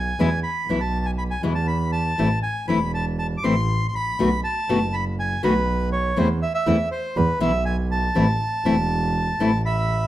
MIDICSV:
0, 0, Header, 1, 4, 480
1, 0, Start_track
1, 0, Key_signature, 0, "minor"
1, 0, Tempo, 498753
1, 177, Time_signature, 4, 2, 24, 8
1, 9691, End_track
2, 0, Start_track
2, 0, Title_t, "Bandoneon"
2, 0, Program_c, 0, 23
2, 0, Note_on_c, 0, 80, 59
2, 383, Note_off_c, 0, 80, 0
2, 417, Note_on_c, 0, 83, 60
2, 774, Note_on_c, 0, 81, 54
2, 786, Note_off_c, 0, 83, 0
2, 1015, Note_on_c, 0, 80, 56
2, 1022, Note_off_c, 0, 81, 0
2, 1069, Note_off_c, 0, 80, 0
2, 1137, Note_on_c, 0, 83, 57
2, 1191, Note_off_c, 0, 83, 0
2, 1257, Note_on_c, 0, 80, 58
2, 1365, Note_off_c, 0, 80, 0
2, 1489, Note_on_c, 0, 81, 52
2, 1606, Note_off_c, 0, 81, 0
2, 1611, Note_on_c, 0, 83, 61
2, 1840, Note_off_c, 0, 83, 0
2, 1851, Note_on_c, 0, 81, 71
2, 2304, Note_off_c, 0, 81, 0
2, 2336, Note_on_c, 0, 80, 64
2, 2565, Note_off_c, 0, 80, 0
2, 2579, Note_on_c, 0, 83, 62
2, 2808, Note_off_c, 0, 83, 0
2, 2832, Note_on_c, 0, 81, 65
2, 2940, Note_off_c, 0, 81, 0
2, 3068, Note_on_c, 0, 81, 59
2, 3146, Note_off_c, 0, 81, 0
2, 3248, Note_on_c, 0, 86, 51
2, 3307, Note_on_c, 0, 84, 74
2, 3314, Note_off_c, 0, 86, 0
2, 3725, Note_off_c, 0, 84, 0
2, 3739, Note_on_c, 0, 84, 52
2, 3798, Note_off_c, 0, 84, 0
2, 3801, Note_on_c, 0, 83, 79
2, 4242, Note_off_c, 0, 83, 0
2, 4273, Note_on_c, 0, 81, 71
2, 4750, Note_on_c, 0, 83, 70
2, 4763, Note_off_c, 0, 81, 0
2, 4857, Note_off_c, 0, 83, 0
2, 4998, Note_on_c, 0, 80, 69
2, 5216, Note_off_c, 0, 80, 0
2, 5234, Note_on_c, 0, 71, 67
2, 5674, Note_off_c, 0, 71, 0
2, 5700, Note_on_c, 0, 73, 65
2, 5946, Note_on_c, 0, 72, 65
2, 5947, Note_off_c, 0, 73, 0
2, 6052, Note_off_c, 0, 72, 0
2, 6183, Note_on_c, 0, 76, 62
2, 6283, Note_off_c, 0, 76, 0
2, 6297, Note_on_c, 0, 76, 60
2, 6632, Note_off_c, 0, 76, 0
2, 6655, Note_on_c, 0, 72, 62
2, 6893, Note_on_c, 0, 71, 63
2, 6903, Note_off_c, 0, 72, 0
2, 7117, Note_off_c, 0, 71, 0
2, 7133, Note_on_c, 0, 76, 70
2, 7357, Note_off_c, 0, 76, 0
2, 7365, Note_on_c, 0, 80, 59
2, 7475, Note_off_c, 0, 80, 0
2, 7616, Note_on_c, 0, 81, 68
2, 9258, Note_off_c, 0, 81, 0
2, 9291, Note_on_c, 0, 83, 64
2, 9300, Note_on_c, 0, 76, 46
2, 9691, Note_off_c, 0, 76, 0
2, 9691, Note_off_c, 0, 83, 0
2, 9691, End_track
3, 0, Start_track
3, 0, Title_t, "Nylon-string guitar"
3, 0, Program_c, 1, 24
3, 184, Note_on_c, 1, 47, 59
3, 188, Note_on_c, 1, 52, 59
3, 192, Note_on_c, 1, 56, 64
3, 193, Note_on_c, 1, 59, 63
3, 198, Note_on_c, 1, 64, 68
3, 267, Note_off_c, 1, 47, 0
3, 269, Note_off_c, 1, 52, 0
3, 271, Note_off_c, 1, 56, 0
3, 272, Note_off_c, 1, 59, 0
3, 274, Note_off_c, 1, 64, 0
3, 666, Note_on_c, 1, 47, 56
3, 666, Note_on_c, 1, 52, 52
3, 674, Note_on_c, 1, 56, 52
3, 676, Note_on_c, 1, 59, 61
3, 681, Note_on_c, 1, 64, 56
3, 748, Note_off_c, 1, 47, 0
3, 748, Note_off_c, 1, 52, 0
3, 752, Note_off_c, 1, 56, 0
3, 753, Note_off_c, 1, 59, 0
3, 755, Note_off_c, 1, 64, 0
3, 1376, Note_on_c, 1, 47, 55
3, 1381, Note_on_c, 1, 52, 63
3, 1381, Note_on_c, 1, 56, 58
3, 1386, Note_on_c, 1, 59, 63
3, 1393, Note_on_c, 1, 64, 57
3, 1464, Note_off_c, 1, 47, 0
3, 1467, Note_off_c, 1, 52, 0
3, 1467, Note_off_c, 1, 56, 0
3, 1469, Note_off_c, 1, 59, 0
3, 1473, Note_off_c, 1, 64, 0
3, 2098, Note_on_c, 1, 52, 56
3, 2104, Note_on_c, 1, 57, 60
3, 2107, Note_on_c, 1, 60, 61
3, 2110, Note_on_c, 1, 64, 58
3, 2187, Note_off_c, 1, 52, 0
3, 2190, Note_off_c, 1, 57, 0
3, 2192, Note_off_c, 1, 60, 0
3, 2193, Note_off_c, 1, 64, 0
3, 2577, Note_on_c, 1, 52, 59
3, 2585, Note_on_c, 1, 60, 50
3, 2586, Note_on_c, 1, 57, 56
3, 2597, Note_on_c, 1, 64, 60
3, 2670, Note_off_c, 1, 52, 0
3, 2674, Note_off_c, 1, 57, 0
3, 2674, Note_off_c, 1, 60, 0
3, 2680, Note_off_c, 1, 64, 0
3, 3309, Note_on_c, 1, 52, 56
3, 3313, Note_on_c, 1, 57, 66
3, 3314, Note_on_c, 1, 60, 66
3, 3319, Note_on_c, 1, 64, 62
3, 3397, Note_off_c, 1, 52, 0
3, 3399, Note_off_c, 1, 57, 0
3, 3400, Note_off_c, 1, 60, 0
3, 3402, Note_off_c, 1, 64, 0
3, 4032, Note_on_c, 1, 47, 63
3, 4032, Note_on_c, 1, 51, 63
3, 4040, Note_on_c, 1, 57, 62
3, 4041, Note_on_c, 1, 59, 62
3, 4045, Note_on_c, 1, 66, 68
3, 4118, Note_off_c, 1, 47, 0
3, 4118, Note_off_c, 1, 51, 0
3, 4122, Note_off_c, 1, 57, 0
3, 4123, Note_off_c, 1, 59, 0
3, 4125, Note_off_c, 1, 66, 0
3, 4515, Note_on_c, 1, 47, 62
3, 4516, Note_on_c, 1, 57, 59
3, 4518, Note_on_c, 1, 51, 65
3, 4522, Note_on_c, 1, 66, 58
3, 4524, Note_on_c, 1, 59, 67
3, 4598, Note_off_c, 1, 47, 0
3, 4599, Note_off_c, 1, 57, 0
3, 4600, Note_off_c, 1, 51, 0
3, 4602, Note_off_c, 1, 66, 0
3, 4603, Note_off_c, 1, 59, 0
3, 5224, Note_on_c, 1, 47, 66
3, 5226, Note_on_c, 1, 57, 63
3, 5229, Note_on_c, 1, 51, 67
3, 5234, Note_on_c, 1, 59, 65
3, 5234, Note_on_c, 1, 66, 63
3, 5312, Note_off_c, 1, 47, 0
3, 5313, Note_off_c, 1, 57, 0
3, 5315, Note_off_c, 1, 51, 0
3, 5317, Note_off_c, 1, 59, 0
3, 5317, Note_off_c, 1, 66, 0
3, 5933, Note_on_c, 1, 52, 61
3, 5940, Note_on_c, 1, 57, 66
3, 5941, Note_on_c, 1, 60, 71
3, 5947, Note_on_c, 1, 64, 63
3, 6024, Note_off_c, 1, 52, 0
3, 6028, Note_off_c, 1, 57, 0
3, 6028, Note_off_c, 1, 60, 0
3, 6031, Note_off_c, 1, 64, 0
3, 6412, Note_on_c, 1, 52, 63
3, 6414, Note_on_c, 1, 57, 64
3, 6422, Note_on_c, 1, 64, 62
3, 6423, Note_on_c, 1, 60, 63
3, 6502, Note_off_c, 1, 52, 0
3, 6503, Note_off_c, 1, 57, 0
3, 6508, Note_off_c, 1, 60, 0
3, 6508, Note_off_c, 1, 64, 0
3, 7125, Note_on_c, 1, 47, 61
3, 7126, Note_on_c, 1, 52, 73
3, 7130, Note_on_c, 1, 56, 67
3, 7131, Note_on_c, 1, 59, 71
3, 7136, Note_on_c, 1, 64, 69
3, 7217, Note_off_c, 1, 47, 0
3, 7218, Note_off_c, 1, 52, 0
3, 7220, Note_off_c, 1, 56, 0
3, 7220, Note_off_c, 1, 59, 0
3, 7223, Note_off_c, 1, 64, 0
3, 7844, Note_on_c, 1, 52, 65
3, 7847, Note_on_c, 1, 57, 62
3, 7850, Note_on_c, 1, 60, 71
3, 7857, Note_on_c, 1, 64, 68
3, 7935, Note_off_c, 1, 52, 0
3, 7936, Note_off_c, 1, 57, 0
3, 7938, Note_off_c, 1, 60, 0
3, 7941, Note_off_c, 1, 64, 0
3, 8324, Note_on_c, 1, 52, 56
3, 8329, Note_on_c, 1, 57, 64
3, 8334, Note_on_c, 1, 60, 63
3, 8335, Note_on_c, 1, 64, 74
3, 8415, Note_off_c, 1, 52, 0
3, 8417, Note_off_c, 1, 57, 0
3, 8419, Note_off_c, 1, 60, 0
3, 8420, Note_off_c, 1, 64, 0
3, 9046, Note_on_c, 1, 52, 68
3, 9050, Note_on_c, 1, 57, 66
3, 9054, Note_on_c, 1, 60, 67
3, 9059, Note_on_c, 1, 64, 63
3, 9138, Note_off_c, 1, 52, 0
3, 9139, Note_off_c, 1, 57, 0
3, 9141, Note_off_c, 1, 60, 0
3, 9144, Note_off_c, 1, 64, 0
3, 9691, End_track
4, 0, Start_track
4, 0, Title_t, "Double bass"
4, 0, Program_c, 2, 43
4, 0, Note_on_c, 2, 35, 69
4, 140, Note_off_c, 2, 35, 0
4, 178, Note_on_c, 2, 40, 64
4, 378, Note_off_c, 2, 40, 0
4, 652, Note_on_c, 2, 35, 68
4, 1339, Note_off_c, 2, 35, 0
4, 1378, Note_on_c, 2, 40, 66
4, 2066, Note_off_c, 2, 40, 0
4, 2103, Note_on_c, 2, 33, 63
4, 2305, Note_off_c, 2, 33, 0
4, 2584, Note_on_c, 2, 28, 66
4, 3274, Note_off_c, 2, 28, 0
4, 3310, Note_on_c, 2, 33, 75
4, 3782, Note_off_c, 2, 33, 0
4, 3788, Note_on_c, 2, 33, 44
4, 4029, Note_off_c, 2, 33, 0
4, 4033, Note_on_c, 2, 35, 66
4, 4233, Note_off_c, 2, 35, 0
4, 4513, Note_on_c, 2, 30, 63
4, 5193, Note_off_c, 2, 30, 0
4, 5232, Note_on_c, 2, 35, 75
4, 5909, Note_off_c, 2, 35, 0
4, 5943, Note_on_c, 2, 40, 76
4, 6143, Note_off_c, 2, 40, 0
4, 6418, Note_on_c, 2, 40, 68
4, 6619, Note_off_c, 2, 40, 0
4, 6896, Note_on_c, 2, 40, 79
4, 7097, Note_off_c, 2, 40, 0
4, 7136, Note_on_c, 2, 35, 76
4, 7816, Note_off_c, 2, 35, 0
4, 7844, Note_on_c, 2, 33, 70
4, 8049, Note_off_c, 2, 33, 0
4, 8328, Note_on_c, 2, 28, 70
4, 9015, Note_off_c, 2, 28, 0
4, 9046, Note_on_c, 2, 33, 70
4, 9691, Note_off_c, 2, 33, 0
4, 9691, End_track
0, 0, End_of_file